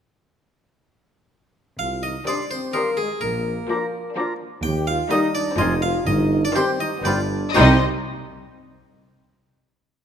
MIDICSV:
0, 0, Header, 1, 12, 480
1, 0, Start_track
1, 0, Key_signature, -3, "minor"
1, 0, Tempo, 475436
1, 1809, Time_signature, 3, 2, 24, 8
1, 6125, Tempo, 497100
1, 9970, End_track
2, 0, Start_track
2, 0, Title_t, "Flute"
2, 0, Program_c, 0, 73
2, 2292, Note_on_c, 0, 87, 42
2, 2378, Note_off_c, 0, 87, 0
2, 2760, Note_on_c, 0, 87, 38
2, 2848, Note_off_c, 0, 87, 0
2, 3734, Note_on_c, 0, 86, 54
2, 3819, Note_off_c, 0, 86, 0
2, 4213, Note_on_c, 0, 86, 54
2, 4298, Note_off_c, 0, 86, 0
2, 5169, Note_on_c, 0, 87, 72
2, 5254, Note_off_c, 0, 87, 0
2, 5635, Note_on_c, 0, 84, 61
2, 5723, Note_off_c, 0, 84, 0
2, 6610, Note_on_c, 0, 84, 72
2, 6694, Note_off_c, 0, 84, 0
2, 7079, Note_on_c, 0, 83, 54
2, 7166, Note_off_c, 0, 83, 0
2, 7574, Note_on_c, 0, 84, 74
2, 7837, Note_off_c, 0, 84, 0
2, 9970, End_track
3, 0, Start_track
3, 0, Title_t, "Oboe"
3, 0, Program_c, 1, 68
3, 2309, Note_on_c, 1, 84, 39
3, 2470, Note_off_c, 1, 84, 0
3, 2771, Note_on_c, 1, 84, 39
3, 2933, Note_off_c, 1, 84, 0
3, 3741, Note_on_c, 1, 82, 49
3, 3903, Note_off_c, 1, 82, 0
3, 4214, Note_on_c, 1, 82, 45
3, 4376, Note_off_c, 1, 82, 0
3, 5164, Note_on_c, 1, 82, 58
3, 5326, Note_off_c, 1, 82, 0
3, 5645, Note_on_c, 1, 80, 51
3, 5807, Note_off_c, 1, 80, 0
3, 6594, Note_on_c, 1, 79, 58
3, 6748, Note_off_c, 1, 79, 0
3, 7059, Note_on_c, 1, 79, 55
3, 7214, Note_off_c, 1, 79, 0
3, 7565, Note_on_c, 1, 79, 71
3, 7765, Note_off_c, 1, 79, 0
3, 9970, End_track
4, 0, Start_track
4, 0, Title_t, "Harpsichord"
4, 0, Program_c, 2, 6
4, 1806, Note_on_c, 2, 77, 69
4, 2031, Note_off_c, 2, 77, 0
4, 2049, Note_on_c, 2, 75, 48
4, 2272, Note_off_c, 2, 75, 0
4, 2292, Note_on_c, 2, 74, 64
4, 2514, Note_off_c, 2, 74, 0
4, 2531, Note_on_c, 2, 72, 58
4, 2753, Note_off_c, 2, 72, 0
4, 2761, Note_on_c, 2, 70, 66
4, 2988, Note_off_c, 2, 70, 0
4, 2999, Note_on_c, 2, 68, 52
4, 3227, Note_off_c, 2, 68, 0
4, 3241, Note_on_c, 2, 70, 57
4, 4397, Note_off_c, 2, 70, 0
4, 4673, Note_on_c, 2, 79, 84
4, 4899, Note_off_c, 2, 79, 0
4, 4920, Note_on_c, 2, 77, 80
4, 5142, Note_off_c, 2, 77, 0
4, 5156, Note_on_c, 2, 75, 90
4, 5381, Note_off_c, 2, 75, 0
4, 5399, Note_on_c, 2, 74, 78
4, 5623, Note_off_c, 2, 74, 0
4, 5636, Note_on_c, 2, 75, 92
4, 5864, Note_off_c, 2, 75, 0
4, 5878, Note_on_c, 2, 77, 82
4, 6107, Note_off_c, 2, 77, 0
4, 6125, Note_on_c, 2, 75, 91
4, 6454, Note_off_c, 2, 75, 0
4, 6493, Note_on_c, 2, 74, 90
4, 6597, Note_off_c, 2, 74, 0
4, 6599, Note_on_c, 2, 72, 81
4, 6819, Note_off_c, 2, 72, 0
4, 6837, Note_on_c, 2, 75, 88
4, 7059, Note_off_c, 2, 75, 0
4, 7075, Note_on_c, 2, 74, 79
4, 7527, Note_off_c, 2, 74, 0
4, 7552, Note_on_c, 2, 72, 83
4, 7825, Note_off_c, 2, 72, 0
4, 9970, End_track
5, 0, Start_track
5, 0, Title_t, "Clarinet"
5, 0, Program_c, 3, 71
5, 2287, Note_on_c, 3, 67, 41
5, 2449, Note_off_c, 3, 67, 0
5, 2766, Note_on_c, 3, 67, 43
5, 2927, Note_off_c, 3, 67, 0
5, 3730, Note_on_c, 3, 65, 46
5, 3892, Note_off_c, 3, 65, 0
5, 4212, Note_on_c, 3, 65, 49
5, 4373, Note_off_c, 3, 65, 0
5, 5163, Note_on_c, 3, 63, 58
5, 5324, Note_off_c, 3, 63, 0
5, 5632, Note_on_c, 3, 65, 63
5, 5794, Note_off_c, 3, 65, 0
5, 6594, Note_on_c, 3, 67, 62
5, 6748, Note_off_c, 3, 67, 0
5, 7075, Note_on_c, 3, 65, 57
5, 7229, Note_off_c, 3, 65, 0
5, 7556, Note_on_c, 3, 63, 74
5, 7759, Note_off_c, 3, 63, 0
5, 9970, End_track
6, 0, Start_track
6, 0, Title_t, "French horn section"
6, 0, Program_c, 4, 60
6, 1815, Note_on_c, 4, 65, 57
6, 2035, Note_off_c, 4, 65, 0
6, 2058, Note_on_c, 4, 63, 45
6, 2164, Note_off_c, 4, 63, 0
6, 2291, Note_on_c, 4, 62, 56
6, 2398, Note_off_c, 4, 62, 0
6, 2536, Note_on_c, 4, 60, 50
6, 2768, Note_off_c, 4, 60, 0
6, 2788, Note_on_c, 4, 58, 54
6, 3019, Note_off_c, 4, 58, 0
6, 3019, Note_on_c, 4, 56, 49
6, 3125, Note_off_c, 4, 56, 0
6, 3257, Note_on_c, 4, 58, 58
6, 4422, Note_off_c, 4, 58, 0
6, 4700, Note_on_c, 4, 67, 76
6, 4913, Note_off_c, 4, 67, 0
6, 4932, Note_on_c, 4, 65, 78
6, 5161, Note_off_c, 4, 65, 0
6, 5167, Note_on_c, 4, 63, 82
6, 5399, Note_on_c, 4, 62, 72
6, 5403, Note_off_c, 4, 63, 0
6, 5641, Note_off_c, 4, 62, 0
6, 5653, Note_on_c, 4, 63, 91
6, 5885, Note_off_c, 4, 63, 0
6, 5887, Note_on_c, 4, 65, 81
6, 6116, Note_on_c, 4, 63, 81
6, 6129, Note_off_c, 4, 65, 0
6, 6467, Note_off_c, 4, 63, 0
6, 6480, Note_on_c, 4, 62, 75
6, 6533, Note_off_c, 4, 62, 0
6, 6593, Note_on_c, 4, 60, 80
6, 6828, Note_off_c, 4, 60, 0
6, 6838, Note_on_c, 4, 63, 73
6, 6945, Note_off_c, 4, 63, 0
6, 7085, Note_on_c, 4, 62, 70
6, 7556, Note_off_c, 4, 62, 0
6, 7567, Note_on_c, 4, 60, 76
6, 7767, Note_off_c, 4, 60, 0
6, 9970, End_track
7, 0, Start_track
7, 0, Title_t, "Violin section"
7, 0, Program_c, 5, 48
7, 2291, Note_on_c, 5, 60, 43
7, 2647, Note_off_c, 5, 60, 0
7, 2768, Note_on_c, 5, 60, 39
7, 3126, Note_off_c, 5, 60, 0
7, 3733, Note_on_c, 5, 62, 45
7, 4085, Note_off_c, 5, 62, 0
7, 4207, Note_on_c, 5, 62, 54
7, 4560, Note_off_c, 5, 62, 0
7, 5164, Note_on_c, 5, 63, 66
7, 5520, Note_off_c, 5, 63, 0
7, 5629, Note_on_c, 5, 60, 65
7, 5997, Note_off_c, 5, 60, 0
7, 6593, Note_on_c, 5, 60, 68
7, 6949, Note_off_c, 5, 60, 0
7, 7065, Note_on_c, 5, 59, 57
7, 7432, Note_off_c, 5, 59, 0
7, 7563, Note_on_c, 5, 75, 75
7, 7831, Note_off_c, 5, 75, 0
7, 9970, End_track
8, 0, Start_track
8, 0, Title_t, "Violin section"
8, 0, Program_c, 6, 48
8, 2283, Note_on_c, 6, 55, 44
8, 2643, Note_off_c, 6, 55, 0
8, 2779, Note_on_c, 6, 55, 52
8, 3131, Note_off_c, 6, 55, 0
8, 3735, Note_on_c, 6, 58, 52
8, 4086, Note_off_c, 6, 58, 0
8, 4197, Note_on_c, 6, 58, 59
8, 4555, Note_off_c, 6, 58, 0
8, 5142, Note_on_c, 6, 58, 68
8, 5508, Note_off_c, 6, 58, 0
8, 5634, Note_on_c, 6, 56, 76
8, 5999, Note_off_c, 6, 56, 0
8, 6590, Note_on_c, 6, 55, 77
8, 6948, Note_off_c, 6, 55, 0
8, 7070, Note_on_c, 6, 55, 61
8, 7434, Note_off_c, 6, 55, 0
8, 7552, Note_on_c, 6, 63, 63
8, 7825, Note_off_c, 6, 63, 0
8, 9970, End_track
9, 0, Start_track
9, 0, Title_t, "Viola section"
9, 0, Program_c, 7, 48
9, 2289, Note_on_c, 7, 51, 45
9, 2646, Note_off_c, 7, 51, 0
9, 2775, Note_on_c, 7, 51, 52
9, 3129, Note_off_c, 7, 51, 0
9, 3730, Note_on_c, 7, 53, 60
9, 4084, Note_off_c, 7, 53, 0
9, 4211, Note_on_c, 7, 53, 61
9, 4562, Note_off_c, 7, 53, 0
9, 5162, Note_on_c, 7, 55, 79
9, 5518, Note_off_c, 7, 55, 0
9, 5643, Note_on_c, 7, 53, 74
9, 6004, Note_off_c, 7, 53, 0
9, 6594, Note_on_c, 7, 51, 73
9, 6950, Note_off_c, 7, 51, 0
9, 7082, Note_on_c, 7, 53, 65
9, 7440, Note_off_c, 7, 53, 0
9, 7564, Note_on_c, 7, 55, 71
9, 7831, Note_off_c, 7, 55, 0
9, 9970, End_track
10, 0, Start_track
10, 0, Title_t, "Cello section"
10, 0, Program_c, 8, 48
10, 1811, Note_on_c, 8, 48, 49
10, 2189, Note_off_c, 8, 48, 0
10, 3257, Note_on_c, 8, 46, 54
10, 3631, Note_off_c, 8, 46, 0
10, 4678, Note_on_c, 8, 39, 73
10, 5058, Note_off_c, 8, 39, 0
10, 5637, Note_on_c, 8, 41, 82
10, 6023, Note_off_c, 8, 41, 0
10, 6124, Note_on_c, 8, 43, 80
10, 6498, Note_off_c, 8, 43, 0
10, 7075, Note_on_c, 8, 43, 78
10, 7459, Note_off_c, 8, 43, 0
10, 7565, Note_on_c, 8, 48, 79
10, 7832, Note_off_c, 8, 48, 0
10, 9970, End_track
11, 0, Start_track
11, 0, Title_t, "Double bass section"
11, 0, Program_c, 10, 48
11, 1804, Note_on_c, 10, 36, 49
11, 2185, Note_off_c, 10, 36, 0
11, 3251, Note_on_c, 10, 34, 58
11, 3628, Note_off_c, 10, 34, 0
11, 4682, Note_on_c, 10, 39, 74
11, 5059, Note_off_c, 10, 39, 0
11, 5638, Note_on_c, 10, 29, 70
11, 6024, Note_off_c, 10, 29, 0
11, 6126, Note_on_c, 10, 31, 87
11, 6498, Note_off_c, 10, 31, 0
11, 7073, Note_on_c, 10, 31, 64
11, 7458, Note_off_c, 10, 31, 0
11, 7568, Note_on_c, 10, 36, 86
11, 7833, Note_off_c, 10, 36, 0
11, 9970, End_track
12, 0, Start_track
12, 0, Title_t, "Tuba"
12, 0, Program_c, 11, 58
12, 1811, Note_on_c, 11, 36, 57
12, 2189, Note_off_c, 11, 36, 0
12, 3255, Note_on_c, 11, 34, 59
12, 3630, Note_off_c, 11, 34, 0
12, 4683, Note_on_c, 11, 39, 80
12, 5060, Note_off_c, 11, 39, 0
12, 5641, Note_on_c, 11, 29, 87
12, 6025, Note_off_c, 11, 29, 0
12, 6130, Note_on_c, 11, 31, 93
12, 6501, Note_off_c, 11, 31, 0
12, 7079, Note_on_c, 11, 31, 71
12, 7461, Note_off_c, 11, 31, 0
12, 7572, Note_on_c, 11, 36, 87
12, 7769, Note_off_c, 11, 36, 0
12, 9970, End_track
0, 0, End_of_file